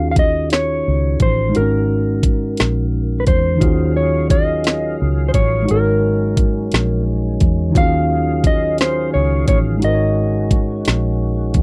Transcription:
Already playing: fingered electric bass D#2, tine electric piano D#3 C#4 D#4 F4 F#4 G#4, clean electric guitar F5
0.11 clean electric guitar F5
0.16 clean electric guitar D#5, kick, closed hi-hat
0.50 clean electric guitar C#5, snare, closed hi-hat
0.88 fingered electric bass C#2
1.20 fingered electric bass A1, clean electric guitar C5, kick, closed hi-hat
1.49 tine electric piano G#3 D#4
1.55 fingered electric bass G#1, tine electric piano F#4 A#4, clean electric guitar A#4, closed hi-hat
1.61 tine electric piano C#4
2.23 kick, closed hi-hat
2.57 fingered electric bass A#1, snare, closed hi-hat
3.20 clean electric guitar B4
3.27 fingered electric bass E2, clean electric guitar C5, kick, closed hi-hat
3.56 tine electric piano D#3 D#4
3.60 fingered electric bass D#2, tonewheel organ D#3 F#3 C#4 G#4 F5, tine electric piano F4 F#4, kick, closed hi-hat
3.65 tine electric piano C#4 G#4
3.97 clean electric guitar C#5
4.30 clean electric guitar D#5, kick, closed hi-hat
4.64 snare, closed hi-hat
5.02 fingered electric bass C#2
5.28 clean electric guitar C5
5.34 fingered electric bass A1, clean electric guitar C#5, kick, closed hi-hat
5.62 tine electric piano G#3 D#4
5.68 fingered electric bass G#1, tonewheel organ G#3, tine electric piano F#4 A#4, clean electric guitar A#4, closed hi-hat
5.74 tine electric piano C#5
6.37 kick, closed hi-hat
6.72 fingered electric bass A#1, snare, closed hi-hat
7.40 fingered electric bass E2, kick, closed hi-hat
7.70 tine electric piano D#3 D#4
7.74 fingered electric bass D#2, tonewheel organ D#3 G#4 F5, tine electric piano F4 F#4, clean electric guitar F5, kick, closed hi-hat
7.79 tine electric piano C#4 G#4
8.44 clean electric guitar D#5, kick, closed hi-hat
8.78 clean electric guitar C5, snare, closed hi-hat
9.14 fingered electric bass C#2, clean electric guitar C#5
9.48 fingered electric bass A1, clean electric guitar C#5, kick, closed hi-hat
9.77 tine electric piano G#3 D#4
9.82 fingered electric bass G#1, tonewheel organ G#3 F#4, tine electric piano F#4 A#4, clean electric guitar D#5, closed hi-hat
9.88 tine electric piano C5
9.94 tine electric piano C#5
10.51 kick, closed hi-hat
10.85 fingered electric bass A#1, snare, closed hi-hat
11.54 fingered electric bass E2, kick, closed hi-hat

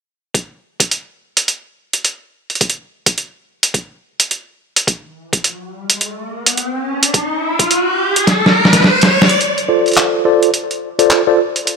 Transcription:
0.34 kick, closed hi-hat
0.80 kick, closed hi-hat
0.91 closed hi-hat
1.37 closed hi-hat
1.48 closed hi-hat
1.93 closed hi-hat
2.05 closed hi-hat
2.50 closed hi-hat
2.55 closed hi-hat
2.61 kick, closed hi-hat
2.70 closed hi-hat
3.06 kick, closed hi-hat
3.18 closed hi-hat
3.63 closed hi-hat
3.74 kick, closed hi-hat
4.20 closed hi-hat
4.31 closed hi-hat
4.76 closed hi-hat
4.87 kick, closed hi-hat, riser
5.33 kick, closed hi-hat
5.44 closed hi-hat
5.90 closed hi-hat
6.01 closed hi-hat
6.46 closed hi-hat
6.57 closed hi-hat
7.03 closed hi-hat
7.14 kick, closed hi-hat
7.59 kick, closed hi-hat
7.71 closed hi-hat
8.16 closed hi-hat
8.27 kick, snare, closed hi-hat
8.46 snare
8.65 snare
8.73 snare, closed hi-hat
8.75 snare
8.80 snare
8.84 snare
8.90 snare
9.01 snare, closed hi-hat
9.22 snare
9.29 closed hi-hat
9.41 closed hi-hat
9.58 closed hi-hat
9.69 tine electric piano F4 A4 C5 D5
9.86 closed hi-hat
9.88 closed hi-hat
9.92 closed hi-hat
9.93 closed hi-hat
9.95 clap, closed hi-hat
9.97 closed hi-hat
10.25 tine electric piano F4 A4 C5 D5
10.43 closed hi-hat
10.54 closed hi-hat
10.71 closed hi-hat
10.99 tine electric piano F4 A4 C5 D5, closed hi-hat
11.10 clap, closed hi-hat
11.27 tine electric piano F4 A4 C5 D5
11.56 closed hi-hat
11.67 closed hi-hat

